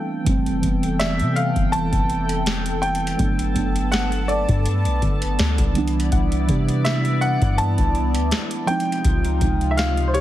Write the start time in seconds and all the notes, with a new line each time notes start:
Already playing: E3 G3 A3 C4 D4 A4 F5 G5 A5
0.24 F1 E3 G3 A3 A4 G5, kick, closed hi-hat
0.29 C4
0.46 closed hi-hat
0.61 F1 E3 G3 A3, kick, closed hi-hat
0.66 B3
0.83 closed hi-hat
0.99 D5 E5, snare, closed hi-hat
1.20 C3, closed hi-hat
1.36 F5, closed hi-hat
1.56 F1, kick, closed hi-hat
1.72 A5, closed hi-hat
1.93 F1, kick, closed hi-hat
2.10 closed hi-hat
2.29 closed hi-hat
2.46 snare, closed hi-hat
2.66 closed hi-hat
2.82 G5, closed hi-hat
2.95 closed hi-hat
3.07 closed hi-hat
3.17 G1 F#3 A3 B3 A5, kick, closed hi-hat
3.22 D4
3.39 closed hi-hat
3.54 G1 F#3 A3 B3, kick, closed hi-hat
3.58 D4
3.76 closed hi-hat
3.92 F#5, snare, closed hi-hat
4.12 closed hi-hat
4.28 A4 D5, closed hi-hat
4.49 G2, kick, closed hi-hat
4.66 closed hi-hat
4.85 B1, closed hi-hat
5.02 G1, kick, closed hi-hat
5.22 closed hi-hat
5.39 D2 D5, snare, closed hi-hat
5.58 C2, kick, closed hi-hat
5.73 D3 G3 B3 E4 D5, closed hi-hat, open hi-hat
5.78 E3 D4
5.88 closed hi-hat
6.00 closed hi-hat
6.12 C2 F#5, kick, closed hi-hat
6.32 closed hi-hat
6.47 C3 E3 G3 B3, kick, closed hi-hat
6.51 D4
6.69 closed hi-hat
6.85 E5, snare, closed hi-hat
7.05 closed hi-hat
7.21 F#5, closed hi-hat
7.41 G2, kick, closed hi-hat
7.58 D5 A5, closed hi-hat
7.78 C2, kick, closed hi-hat
7.95 closed hi-hat
8.15 D2, closed hi-hat
8.31 snare, closed hi-hat
8.51 closed hi-hat
8.66 C3 F3 G#3 C4 D#4 F4 G5, closed hi-hat
8.71 D#4
8.80 closed hi-hat
8.92 closed hi-hat
9.05 C#2, kick, closed hi-hat
9.25 closed hi-hat
9.39 C#2 C3 F3 G#3, kick, closed hi-hat
9.44 D#4
9.61 closed hi-hat
9.71 E5
9.77 F5, snare, closed hi-hat
9.97 closed hi-hat
10.08 C5
10.14 G4 C#5, closed hi-hat